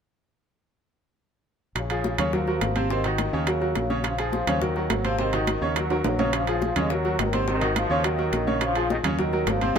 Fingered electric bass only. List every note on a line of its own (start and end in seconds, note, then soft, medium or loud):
1.75 2.16 A#1 medium
2.18 2.58 D#2 medium
2.61 3.27 G#1 medium
3.33 3.73 D#2 medium
3.76 4.42 A#1 medium
4.47 4.87 D#2 medium
4.90 5.56 G#1 medium
5.61 6.01 D#2 medium
6.04 6.70 A#1 medium
6.76 7.16 D#2 medium
7.19 7.85 G#1 medium
7.90 8.30 D#2 medium
8.32 8.98 A#1 medium
9.03 9.44 D#2 medium
9.46 9.73 G#1 medium
9.75 9.79 G#1 medium